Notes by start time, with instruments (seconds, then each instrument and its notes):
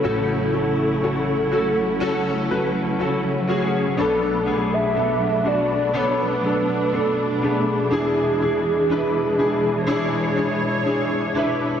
Already playing: string section C#3 F#3 A3 E4
0.03 grand piano A1 A2 C#4 F#4 A4, soft synth lead A4
0.52 grand piano C#4 F#4 A4
1.02 grand piano C#4 F#4 A4
1.51 grand piano C#4 F#4 A4
2.00 grand piano C#4 F#4 A4
2.49 grand piano C#4 F#4 B4
2.99 grand piano C#4 F#4 A4
3.48 grand piano C#4 F#4 G#4
3.97 grand piano B1 B2 B3 D4 A4, string section B2 A3 D4, soft synth lead A4
4.45 grand piano B3 D4 G#4
4.74 soft synth lead E5
4.94 grand piano B3 D4 A4
5.44 grand piano B3 D4 F#4, soft synth lead D5
5.93 grand piano B3 D4 A4, soft synth lead C#5
6.22 soft synth lead B4
6.43 grand piano B3 D4 A4, soft synth lead B4
6.92 grand piano B3 D4 A4, soft synth lead A4
7.42 grand piano A3 B3 D4, soft synth lead G#4
7.90 grand piano E2 E3 D4 E4 G#4, string section E3 G#3
8.40 grand piano D4 E4 G#4
8.89 grand piano D4 E4 B4
9.38 grand piano D4 E4 G#4
9.87 grand piano D4 E4 G#4, string section C#5
10.36 grand piano D4 E4 G#4
10.85 grand piano D4 E4 G#4
11.34 grand piano D4 E4 B4
11.38 soft synth lead E5